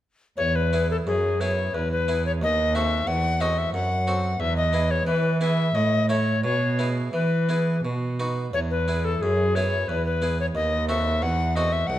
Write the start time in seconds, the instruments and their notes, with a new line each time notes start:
0.37 harpsichord E2, cello E2, recorder C#5
0.56 recorder B4
0.73 harpsichord B3 E4 G#4
0.91 recorder A4
1.06 harpsichord F#2, cello F#2, recorder G#4
1.41 harpsichord B3 E4 G#4, recorder C#5
1.74 cello E2, harpsichord E2, recorder B4
1.92 recorder B4
2.08 harpsichord B3 E4 G#4
2.26 recorder C#5
2.41 cello D#2, harpsichord D#2, recorder D#5
2.75 harpsichord C4 F#4 A4, recorder E5
3.07 harpsichord E2, cello E2, recorder F#5
3.40 harpsichord C4 F#4 A4, recorder D#5
3.58 recorder E5
3.73 cello F#2, harpsichord F#2, recorder F#5
4.07 harpsichord C4 F#4 A4
4.40 harpsichord E2, cello E2, recorder E5
4.57 recorder D#5
4.73 harpsichord B3 E4 G#4
4.91 recorder C#5
5.07 cello E3, harpsichord E3, recorder B4
5.41 harpsichord B3 E4 G#4, recorder E5
5.75 harpsichord A2, cello A2, recorder D#5
6.09 harpsichord A3 E4 A4, recorder C#5
6.44 harpsichord B2, cello B2, recorder C#5
6.79 harpsichord B3 E4 G#4
7.13 harpsichord E3, cello E3, recorder B4
7.49 harpsichord B3 E4 G#4
7.85 harpsichord B2, cello B2
8.20 harpsichord B3 D#4 F#4
8.53 harpsichord E2, cello E2, recorder C#5
8.71 recorder B4
8.88 harpsichord B3 E4 G#4
9.05 recorder A4
9.22 cello F#2, harpsichord F#2, recorder G#4
9.55 harpsichord B3 E4 G#4, recorder C#5
9.88 harpsichord E2, cello E2, recorder B4
10.06 recorder B4
10.22 harpsichord B3 E4 G#4
10.40 recorder C#5
10.55 harpsichord D#2, cello D#2, recorder D#5
10.89 harpsichord C4 F#4 A4, recorder E5
11.22 harpsichord E2, cello E2, recorder F#5
11.56 harpsichord C4 F#4 A4, recorder D#5
11.72 recorder E5
11.87 harpsichord C2, cello C2, recorder F#5